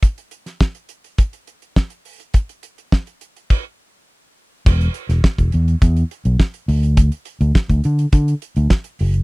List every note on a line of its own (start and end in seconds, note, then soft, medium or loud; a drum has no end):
0.02 kick loud
0.02 closed hi-hat medium
0.18 closed hi-hat soft
0.31 closed hi-hat medium
0.46 snare soft
0.46 closed hi-hat soft
0.61 kick loud
0.61 snare loud
0.75 closed hi-hat soft
0.89 closed hi-hat medium
1.04 closed hi-hat soft
1.18 kick loud
1.18 closed hi-hat medium
1.33 closed hi-hat soft
1.47 closed hi-hat medium
1.62 closed hi-hat soft
1.76 kick loud
1.76 snare loud
1.90 closed hi-hat medium
2.05 open hi-hat medium
2.20 closed hi-hat soft
2.34 kick loud
2.34 closed hi-hat medium
2.49 closed hi-hat soft
2.63 closed hi-hat medium
2.78 closed hi-hat soft
2.92 kick loud
2.92 snare loud
3.07 closed hi-hat soft
3.21 closed hi-hat medium
3.37 closed hi-hat soft
3.50 kick loud
3.50 crash medium
4.66 4.87 E1 loud
4.66 kick loud
4.66 crash loud
4.81 closed hi-hat medium
4.94 closed hi-hat medium
5.09 5.19 E1 medium
5.09 snare soft
5.09 closed hi-hat soft
5.24 kick loud
5.24 snare loud
5.38 5.49 E1 medium
5.38 kick medium
5.38 closed hi-hat medium
5.52 5.74 E2 medium
5.52 closed hi-hat medium
5.68 closed hi-hat medium
5.82 6.02 E2 loud
5.82 kick loud
5.82 closed hi-hat medium
5.97 closed hi-hat soft
6.11 closed hi-hat medium
6.25 6.35 B1 loud
6.25 closed hi-hat soft
6.40 kick loud
6.40 snare loud
6.54 closed hi-hat medium
6.68 7.09 D2 loud
6.68 open hi-hat medium
6.83 closed hi-hat medium
6.97 kick loud
6.97 closed hi-hat medium
7.12 closed hi-hat medium
7.25 closed hi-hat medium
7.41 7.51 D2 loud
7.41 closed hi-hat medium
7.55 kick loud
7.55 snare loud
7.69 7.80 D2 loud
7.69 kick loud
7.69 closed hi-hat medium
7.84 8.05 D3 loud
7.84 closed hi-hat medium
7.99 closed hi-hat medium
8.12 8.33 D3 loud
8.12 kick loud
8.12 closed hi-hat medium
8.28 closed hi-hat medium
8.42 closed hi-hat medium
8.56 8.67 D2 loud
8.56 closed hi-hat soft
8.70 kick loud
8.70 snare loud
8.84 closed hi-hat medium
8.99 9.20 F#1 medium
8.99 open hi-hat medium
9.14 closed hi-hat medium